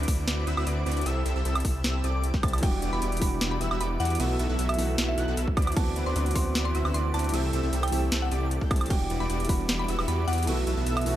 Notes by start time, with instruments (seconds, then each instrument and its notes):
0.03 closed hi-hat
0.08 detuned saw bass D2, supersaw synth C4 E4 F#4 B4 D5, digital synth lead D6, kick, open hi-hat
0.27 detuned saw bass D2, supersaw synth C4 E4 F#4 B4 D5, digital synth lead D6, snare, closed hi-hat
0.47 detuned saw bass D2, supersaw synth C4 E4 F#4 B4 E5, digital synth lead E6, closed hi-hat
0.57 detuned saw bass D2, supersaw synth C4 E4 F#4 B4 E5, digital synth lead E6, high woodblock
0.66 detuned saw bass D2, supersaw synth C4 E4 F#4 B4 D5, digital synth lead D6, closed hi-hat
0.86 detuned saw bass D2, supersaw synth C4 E4 F#4 B4 D5, digital synth lead D6, closed hi-hat
0.92 closed hi-hat
0.97 closed hi-hat
1.01 closed hi-hat
1.06 detuned saw bass C2, supersaw synth C4 E4 G4 A4 E5, digital synth lead E6, closed hi-hat
1.25 detuned saw bass C2, supersaw synth C4 E4 G4 A4 E5, digital synth lead E6, closed hi-hat
1.36 detuned saw bass C2, supersaw synth C4 E4 G4 A4 E5, digital synth lead E6
1.45 detuned saw bass C2, supersaw synth C4 E4 G4 A4 E5, digital synth lead E6, closed hi-hat
1.55 closed hi-hat, high woodblock
1.60 closed hi-hat
1.65 detuned saw bass C2, supersaw synth C4 E4 G4 A4 E5, digital synth lead E6, kick, open hi-hat
1.84 detuned saw bass C2, supersaw synth C4 E4 G4 A4 E5, digital synth lead E6, snare, closed hi-hat
2.04 detuned saw bass C2, supersaw synth C4 E4 G4 A4 D5, digital synth lead D6, closed hi-hat
2.24 closed hi-hat
2.34 detuned saw bass C2, supersaw synth C4 E4 G4 A4 G5, digital synth lead G6, kick, snare
2.43 detuned saw bass C2, supersaw synth C4 E4 G4 A4 A5, digital synth lead A6, kick, closed hi-hat, high woodblock
2.48 closed hi-hat
2.53 closed hi-hat, high woodblock
2.58 grand piano E3, closed hi-hat
2.62 detuned saw bass E1, grand piano G3 D4 F#4, supersaw synth B3 E4 F#4 G4 D5, synth pluck G5, digital synth lead D6, kick, closed hi-hat, crash
2.82 detuned saw bass E1, supersaw synth B3 E4 F#4 G4 D5, digital synth lead D6, closed hi-hat
2.93 detuned saw bass E1, supersaw synth B3 E4 F#4 G4 D5, synth pluck B5, digital synth lead D6
3.02 detuned saw bass E1, supersaw synth B3 E4 F#4 G4 D5, digital synth lead D6, closed hi-hat
3.12 closed hi-hat
3.17 grand piano E3, closed hi-hat
3.21 detuned saw bass E1, grand piano G3 D4 F#4, supersaw synth B3 E4 F#4 G4 D5, synth pluck B5, digital synth lead D6, kick, open hi-hat
3.41 detuned saw bass E1, supersaw synth B3 E4 F#4 G4 D5, digital synth lead D6, snare, closed hi-hat
3.51 synth pluck B5
3.61 detuned saw bass E1, supersaw synth B3 E4 F#4 G4 E5, digital synth lead E6, closed hi-hat
3.71 detuned saw bass E1, supersaw synth B3 E4 F#4 G4 E5, digital synth lead E6, high woodblock
3.80 detuned saw bass E1, supersaw synth B3 E4 F#4 G4 D5, synth pluck B5, digital synth lead D6, closed hi-hat
4.00 detuned saw bass E2, supersaw synth B3 E4 F#4 G4 D5, synth pluck F#5, digital synth lead D6, closed hi-hat
4.05 closed hi-hat
4.10 closed hi-hat
4.15 grand piano E3, closed hi-hat
4.19 detuned saw bass B1, grand piano A3 B3 F#4, supersaw synth B3 E4 F#4 A4 E5, digital synth lead E6, closed hi-hat, crash
4.39 detuned saw bass B1, supersaw synth B3 E4 F#4 A4 E5, digital synth lead E6, closed hi-hat
4.49 detuned saw bass B1, supersaw synth B3 E4 F#4 A4 E5, digital synth lead E6
4.59 detuned saw bass B1, supersaw synth B3 E4 F#4 A4 E5, digital synth lead E6, closed hi-hat
4.69 synth pluck E5, closed hi-hat, high woodblock
4.74 grand piano E3, closed hi-hat
4.78 detuned saw bass B1, grand piano A3 B3 F#4, supersaw synth B3 E4 F#4 A4 E5, digital synth lead E6, open hi-hat
4.98 detuned saw bass B1, supersaw synth B3 E4 F#4 A4 E5, digital synth lead E6, snare, closed hi-hat
5.09 synth pluck E5
5.17 detuned saw bass B1, supersaw synth B3 E4 F#4 A4 F#5, digital synth lead F#6, closed hi-hat
5.28 detuned saw bass B1, supersaw synth B3 E4 F#4 A4 F#5, digital synth lead F#6
5.37 detuned saw bass B1, supersaw synth B3 E4 F#4 A4 E5, digital synth lead E6, closed hi-hat
5.48 kick
5.57 detuned saw bass D2, supersaw synth C4 E4 F#4 B4 D5, digital synth lead D6, kick, closed hi-hat, high woodblock
5.62 closed hi-hat
5.67 closed hi-hat, high woodblock
5.72 grand piano E3, closed hi-hat
5.76 detuned saw bass D2, grand piano B3 C4 F#4, supersaw synth C4 E4 F#4 B4 D5, synth pluck A5, digital synth lead D6, kick, closed hi-hat, crash
5.96 detuned saw bass D2, supersaw synth C4 E4 F#4 B4 D5, digital synth lead D6, closed hi-hat
6.06 detuned saw bass D2, supersaw synth C4 E4 F#4 B4 D5, synth pluck C6, digital synth lead D6
6.16 detuned saw bass D2, supersaw synth C4 E4 F#4 B4 D5, digital synth lead D6, closed hi-hat
6.26 closed hi-hat
6.31 grand piano E3 B3, closed hi-hat
6.35 detuned saw bass D2, supersaw synth C4 E4 F#4 B4 D5, grand piano C4 F#4, synth pluck C6, digital synth lead D6, kick, open hi-hat
6.55 detuned saw bass D2, supersaw synth C4 E4 F#4 B4 D5, digital synth lead D6, snare, closed hi-hat
6.65 synth pluck C6
6.75 detuned saw bass D2, supersaw synth C4 E4 F#4 B4 E5, digital synth lead E6, closed hi-hat
6.85 detuned saw bass D2, supersaw synth C4 E4 F#4 B4 E5, digital synth lead E6, high woodblock
6.94 detuned saw bass D2, supersaw synth C4 E4 F#4 B4 D5, synth pluck C6, digital synth lead D6, closed hi-hat
7.14 detuned saw bass D2, supersaw synth C4 E4 F#4 B4 D5, synth pluck A5, digital synth lead D6, closed hi-hat
7.19 closed hi-hat
7.24 closed hi-hat
7.29 grand piano E3 A3, closed hi-hat
7.33 detuned saw bass C2, supersaw synth C4 E4 G4 A4 E5, grand piano C4 G4, digital synth lead E6, closed hi-hat, crash
7.53 detuned saw bass C2, supersaw synth C4 E4 G4 A4 E5, digital synth lead E6, closed hi-hat
7.63 detuned saw bass C2, supersaw synth C4 E4 G4 A4 E5, digital synth lead E6
7.73 detuned saw bass C2, supersaw synth C4 E4 G4 A4 E5, digital synth lead E6, closed hi-hat
7.83 synth pluck G5, closed hi-hat, high woodblock
7.88 grand piano E3 A3, closed hi-hat
7.92 detuned saw bass C2, supersaw synth C4 E4 G4 A4 E5, grand piano C4 G4, digital synth lead E6, open hi-hat
8.12 detuned saw bass C2, supersaw synth C4 E4 G4 A4 E5, digital synth lead E6, snare, closed hi-hat
8.22 synth pluck F#5
8.32 detuned saw bass C2, supersaw synth C4 E4 G4 A4 D5, digital synth lead D6, closed hi-hat
8.51 closed hi-hat
8.61 detuned saw bass C2, supersaw synth C4 E4 G4 A4 G5, digital synth lead G6, kick
8.70 detuned saw bass C2, grand piano E3 A3 C4 G4, supersaw synth C4 E4 G4 A4 A5, digital synth lead A6, kick, closed hi-hat, high woodblock
8.76 closed hi-hat
8.81 closed hi-hat, high woodblock
8.86 grand piano E3 G3, closed hi-hat
8.90 detuned saw bass E1, supersaw synth B3 E4 F#4 G4 D5, grand piano D4 F#4, synth pluck G5, digital synth lead D6, kick, closed hi-hat, crash
9.10 detuned saw bass E1, supersaw synth B3 E4 F#4 G4 D5, digital synth lead D6, closed hi-hat
9.20 detuned saw bass E1, supersaw synth B3 E4 F#4 G4 D5, synth pluck B5, digital synth lead D6
9.30 detuned saw bass E1, supersaw synth B3 E4 F#4 G4 D5, digital synth lead D6, closed hi-hat
9.40 closed hi-hat
9.45 grand piano E3 G3, closed hi-hat
9.49 detuned saw bass E1, supersaw synth B3 E4 F#4 G4 D5, grand piano D4 F#4, synth pluck B5, kick, open hi-hat
9.69 detuned saw bass E1, supersaw synth B3 E4 F#4 G4 D5, digital synth lead D6, snare, closed hi-hat
9.79 synth pluck B5
9.88 detuned saw bass E1, supersaw synth B3 E4 F#4 G4 E5, digital synth lead E6, closed hi-hat
9.99 detuned saw bass E1, supersaw synth B3 E4 F#4 G4 E5, digital synth lead E6, high woodblock
10.08 detuned saw bass E2, supersaw synth B3 E4 F#4 G4 D5, synth pluck B5, digital synth lead D6, closed hi-hat
10.27 detuned saw bass E2, supersaw synth B3 E4 F#4 G4 D5, synth pluck F#5, digital synth lead D6, closed hi-hat
10.33 closed hi-hat
10.38 closed hi-hat
10.43 grand piano E3 A3, closed hi-hat
10.47 detuned saw bass B1, supersaw synth B3 E4 F#4 A4 E5, grand piano B3 F#4, digital synth lead E6, closed hi-hat, crash
10.67 detuned saw bass B1, supersaw synth B3 E4 F#4 A4 E5, digital synth lead E6, closed hi-hat
10.77 detuned saw bass B1, supersaw synth B3 E4 F#4 A4 E5, digital synth lead E6
10.86 detuned saw bass B1, supersaw synth B3 E4 F#4 A4 E5, digital synth lead E6, closed hi-hat
10.97 synth pluck E5, closed hi-hat, high woodblock
11.01 grand piano E3 A3, closed hi-hat
11.06 detuned saw bass B1, supersaw synth B3 E4 F#4 A4 E5, grand piano B3 F#4, digital synth lead E6, open hi-hat